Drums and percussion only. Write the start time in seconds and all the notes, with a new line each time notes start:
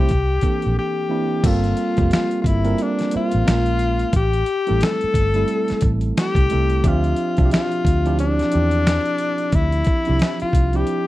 0.09 kick, closed hi-hat
0.41 kick, closed hi-hat
0.62 closed hi-hat
1.44 kick, closed hi-hat, crash
1.64 closed hi-hat
1.77 closed hi-hat
1.97 kick, closed hi-hat
2.11 snare, closed hi-hat
2.31 closed hi-hat
2.44 kick, closed hi-hat
2.65 closed hi-hat
2.78 closed hi-hat
2.99 snare, closed hi-hat
3.11 closed hi-hat
3.31 closed hi-hat
3.48 snare, closed hi-hat
3.66 closed hi-hat
3.79 closed hi-hat
3.99 closed hi-hat
4.13 kick, closed hi-hat
4.33 closed hi-hat
4.46 closed hi-hat
4.67 closed hi-hat
4.81 snare, closed hi-hat
5.01 closed hi-hat
5.14 kick, closed hi-hat
5.34 closed hi-hat
5.48 closed hi-hat
5.68 snare, closed hi-hat
5.81 kick, closed hi-hat
6.01 closed hi-hat
6.17 snare, closed hi-hat
6.35 kick, closed hi-hat
6.50 closed hi-hat
6.70 closed hi-hat
6.84 kick, closed hi-hat
7.04 closed hi-hat
7.16 closed hi-hat
7.37 kick, closed hi-hat
7.51 snare, closed hi-hat
7.72 closed hi-hat
7.85 kick, closed hi-hat
8.06 closed hi-hat
8.19 closed hi-hat
8.39 snare, closed hi-hat
8.52 closed hi-hat
8.71 closed hi-hat
8.87 snare, closed hi-hat
9.05 closed hi-hat
9.18 closed hi-hat
9.38 closed hi-hat
9.52 kick, closed hi-hat
9.72 closed hi-hat
9.84 kick, closed hi-hat
10.05 closed hi-hat
10.19 snare, closed hi-hat
10.40 closed hi-hat
10.53 kick, closed hi-hat
10.73 closed hi-hat
10.87 closed hi-hat